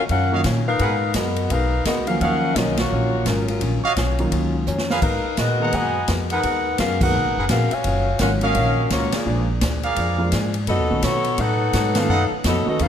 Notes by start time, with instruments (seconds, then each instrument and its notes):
0.09 upright bass F#2, hollow-body jazz guitar D#3 F#3 C#4 F4, saxophone section C#4 A#4 F5 F#5, kick, ride
0.32 grand piano D#3 F#3 A#3 C#4 F4, trumpet section F#4 C#5 D#5 F5
0.44 upright bass A#2, hollow-body jazz guitar D#3 F#3 C#4 F4, kick, snare, hi-hat pedal, ride
0.68 saxophone section D#4 A#4 B4 F5
0.79 upright bass G#2, hollow-body jazz guitar G#3 B3 F#4 A#4, trumpet section G#4 A#4 B4 F#5, kick, ride
1.14 upright bass F#2, hollow-body jazz guitar G#3 B3 F#4 A#4, saxophone section B3 F#4 A#4 D#5, kick, snare, hi-hat pedal, ride
1.36 ride
1.50 upright bass B1, hollow-body jazz guitar G#3 B3 F#4 A#4, saxophone section D#4 A#4 B4 F5, kick, ride
1.85 upright bass C#2, hollow-body jazz guitar G#3 B3 F#4 A#4, saxophone section B3 F#4 A#4 D#5, kick, snare, hi-hat pedal, ride
2.07 grand piano D#3 F3 F#3 A#3 C#4, saxophone section C#4 F#4 A#4 F5, ride
2.20 upright bass D#2, hollow-body jazz guitar D#3 F#3 C#4 F4, saxophone section C#4 A#4 F5 F#5, trumpet section F#4 C#5 D#5 F5, kick, ride
2.56 upright bass B1, grand piano D#3 F#3 A#3 C#4 F4, hollow-body jazz guitar D#3 F#3 C#4 F4, saxophone section C#4 F#4 A#4 D#5, kick, snare, hi-hat pedal, ride
2.77 saxophone section A#3 F4 F#4 C#5, snare, ride
2.91 upright bass A#1, hollow-body jazz guitar D#3 F#3 C#4 F4
3.25 upright bass G#1, hollow-body jazz guitar D#3 F#3 C#4 F4, saxophone section F#3 C#4 F4 A#4, kick, snare, hi-hat pedal, ride
3.48 saxophone section F#3 C#4 F4 A#4, ride
3.61 upright bass A#1, hollow-body jazz guitar D#3 F#3 C#4 F4, kick, ride
3.84 trumpet section F#4 C#5 D#5 F5, muted upright bass stroke
3.96 upright bass B1, hollow-body jazz guitar D#3 F#3 C#4 F4, kick, snare, hi-hat pedal, ride
4.19 grand piano D#3 F#3 A#3 C#4 F4, ride
4.31 upright bass C#2, hollow-body jazz guitar D#3 F#3 C#4 F4, kick, ride
4.67 upright bass F2, hollow-body jazz guitar D#3 F#3 C#4 F4, hi-hat pedal
4.78 snare
4.90 trumpet section G#4 A#4 B4 F5, snare
5.02 upright bass G#2, hollow-body jazz guitar G#3 B3 F#4 A#4, saxophone section D#4 A#4 B4 F5, kick, crash
5.25 muted upright bass stroke
5.37 upright bass A#2, hollow-body jazz guitar G#3 B3 F#4 A#4, saxophone section F#4 A#4 B4 D#5, kick, snare, hi-hat pedal, ride
5.60 grand piano D#3 G#3 A#3 B3 F#4, trumpet section G#4 B4 F#5 A#5
5.73 upright bass F#2, hollow-body jazz guitar G#3 B3 F#4 A#4, saxophone section F#4 B4 D#5 G#5, kick, ride
6.08 upright bass F2, hollow-body jazz guitar G#3 B3 F#4 A#4, kick, snare, hi-hat pedal, ride
6.30 saxophone section D#4 A#4 B4 F#5, trumpet section G#4 A#4 B4 F#5, ride
6.43 upright bass D#2, hollow-body jazz guitar G#3 B3 F#4 A#4, kick, ride
6.78 upright bass F#2, hollow-body jazz guitar G#3 B3 F#4 A#4, saxophone section C#4 F#4 A#4 F5, kick, snare, hi-hat pedal, ride
7.00 grand piano D#3 G#3 A#3 B3 F#4, saxophone section D#4 A#4 B4 F#5, kick, crash
7.14 upright bass B1, hollow-body jazz guitar G#3 B3 F#4 A#4
7.26 upright bass G#1
7.37 upright bass F#1, trumpet section G#4 A#4 B4 F#5
7.49 upright bass A#1, hollow-body jazz guitar G#3 B3 F#4 A#4, saxophone section C#4 F#4 A#4 F5, kick, snare, hi-hat pedal, ride
7.71 saxophone section F#4 C#5 F5 G#5, muted upright bass stroke, ride
7.84 upright bass F#1, hollow-body jazz guitar D#3 F#3 C#4 F4, kick, ride
8.19 upright bass G#1, grand piano D#3 F#3 A#3 C#4 F5, hollow-body jazz guitar D#3 F#3 C#4 F4, saxophone section C#4 F4 A#4 F#5, kick, snare, hi-hat pedal, ride
8.41 saxophone section C#4 F#4 A#4 F5, trumpet section C#5 D#5 F5, ride
8.55 upright bass A#1, hollow-body jazz guitar D#3 F#3 C#4 F4, kick, ride
8.90 upright bass C#2, hollow-body jazz guitar D#3 F#3 C#4 F4, saxophone section A#3 F4 F#4 C#5, kick, snare, hi-hat pedal, ride
9.12 saxophone section A#3 F4 G#4 D5, muted upright bass stroke, snare, ride
9.25 upright bass A#1, hollow-body jazz guitar A#2 F3 G#3 D4, grand piano F3 G#3 A#3 D4 F4
9.61 upright bass D2, hollow-body jazz guitar A#2 F3 G#3 D4, kick, snare, hi-hat pedal, ride
9.83 trumpet section G#4 A#4 D5 F5, ride
9.96 upright bass F2, hollow-body jazz guitar A#2 F3 G#3 D4, kick, ride
10.18 grand piano F3 G#3 A#3 D4 F4
10.32 upright bass G#2, hollow-body jazz guitar A#2 F3 G#3 D4, kick, snare, hi-hat pedal, ride
10.54 ride
10.67 upright bass F#2, hollow-body jazz guitar B2 F#3 A3, saxophone section B3 F#4 A4 D#5, kick, ride
10.71 hollow-body jazz guitar D#4
10.79 upright bass D#2
10.89 upright bass B1, grand piano D#3 A3 B3 C#4 F#4
11.02 upright bass B2, hollow-body jazz guitar B2 F#3 A3 D#4, saxophone section B3 F#4 A4 C#5, kick, snare, hi-hat pedal, ride
11.24 ride
11.38 upright bass A2, hollow-body jazz guitar B2 F#3 A3 D#4, saxophone section D#4 A4 B4 F#5, kick, ride
11.73 upright bass G#2, hollow-body jazz guitar B2 F#3 A3 D#4, kick, snare, hi-hat pedal, ride
11.95 grand piano D#3 A3 B3 C#4 F4, saxophone section D#4 A4 B4 F5, snare, ride
12.09 upright bass F#2, hollow-body jazz guitar B2 F#3 A3 D#4, trumpet section A4 B4 D#5 F#5
12.31 muted upright bass stroke
12.44 upright bass F2, hollow-body jazz guitar B2 F#3 A3 D#4, saxophone section B3 F#4 A4 D#5, kick, snare, hi-hat pedal, ride
12.66 grand piano D#3 A3 B3 C#4 F#4, saxophone section F#4 A4 D#5, muted upright bass stroke
12.70 saxophone section B3
12.79 upright bass D#2, hollow-body jazz guitar B2 F#3 A3 D#4, saxophone section D#4 A4 B4 F5, kick, ride